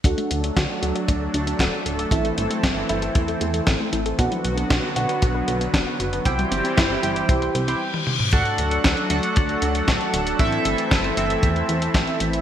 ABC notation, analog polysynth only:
X:1
M:4/4
L:1/16
Q:1/4=116
K:Dmix
V:1 name="Analog polysynth"
[DFAf]6 [DFAf]8- [DFAf]2 | [CEAe]6 [CEAe]8- [CEAe]2 | [DFBf]6 [DFBf]8- [DFBf]2 | [EGcg]6 [EGcg]4- [EGcg] [EGcg] z4 |
[DFAf]6 [DFAf]8- [DFAf]2 | [CEAe]6 [CEAe]8- [CEAe]2 |]